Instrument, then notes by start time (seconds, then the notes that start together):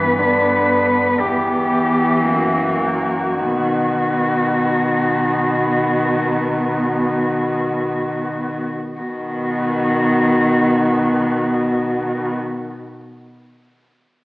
cello
Already playing: G2 E3 B3 B4
0.19 D3
1.20 E2 E3 G4
2.25 F#2 A#3 F#4
3.41 B2 D#3 B3
9.00 B2 D#3 B3 F#4